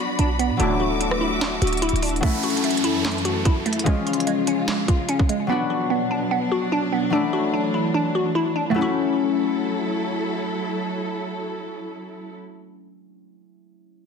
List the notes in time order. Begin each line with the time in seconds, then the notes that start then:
Already playing: F#3 B3 D4 F#4 D5 B5
0.00 F#4
0.19 B1 D4, closed hi-hat
0.39 B3, closed hi-hat
0.50 B2
0.57 D1 A2 D3 F#3 A3 D4 F#4 E5 D6, closed hi-hat
0.62 E4
0.80 F#4
1.01 D4, closed hi-hat
1.11 cross-stick
1.21 E4
1.41 D4, snare, clap, closed hi-hat
1.62 D1 F#4, closed hi-hat
1.67 closed hi-hat
1.73 closed hi-hat
1.77 closed hi-hat
1.82 E4, closed hi-hat
1.89 closed hi-hat
1.93 D1, closed hi-hat
2.02 D4, closed hi-hat, open hi-hat
2.09 closed hi-hat
2.16 closed hi-hat
2.21 F#2 E3 F#3 A3 C#4 A4, kick, closed hi-hat, downlifter
2.26 E4
2.43 F#4, closed hi-hat
2.50 closed hi-hat
2.57 closed hi-hat
2.64 A3, closed hi-hat
2.71 closed hi-hat
2.77 closed hi-hat
2.84 E4, closed hi-hat
3.05 A3, snare, clap, closed hi-hat
3.11 closed hi-hat
3.18 closed hi-hat
3.25 F#4, closed hi-hat
3.45 E4, kick, closed hi-hat
3.66 A3, closed hi-hat
3.73 closed hi-hat
3.79 closed hi-hat
3.84 C#3 F3 G#3 C#4 F4, kick, closed hi-hat
3.89 F4
4.07 F4, closed hi-hat
4.13 closed hi-hat
4.20 closed hi-hat
4.27 G#3, closed hi-hat
4.47 C#4, closed hi-hat
4.68 G#3, snare, clap, closed hi-hat
4.88 F4, kick, closed hi-hat
5.09 C#4, closed hi-hat
5.19 kick
5.29 G#3, closed hi-hat
5.47 B2 F#3 B3 D4
5.52 F#4
5.70 F#4
5.90 B3
6.11 D4
6.31 B3
6.52 F#4
6.72 D4
6.92 B3
7.10 E3 F#3 A3 D4
7.15 E4
7.33 F#4
7.54 D4
7.74 E4
7.94 D4
8.15 F#4
8.35 E4
8.56 D4
8.70 F#3 A3
8.74 F#3 A3 C#4 E4 A4
8.81 E4 F#4